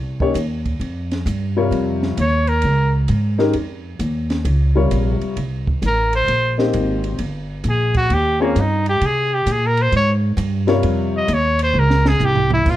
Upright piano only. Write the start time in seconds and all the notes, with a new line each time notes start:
0.21 A#3 C#4 D#4 G4 C#5
1.57 C3 G3 F4 A#4 C#5
3.38 D#3 G#3 C#4 G4 A#4
4.75 C3 G3 F4 A#4 C#5
6.58 A#3 C4 D#4 G4 C5
8.40 C4 C#4 F4 G#4 C#5
10.67 C3 G3 F4 A#4 C#5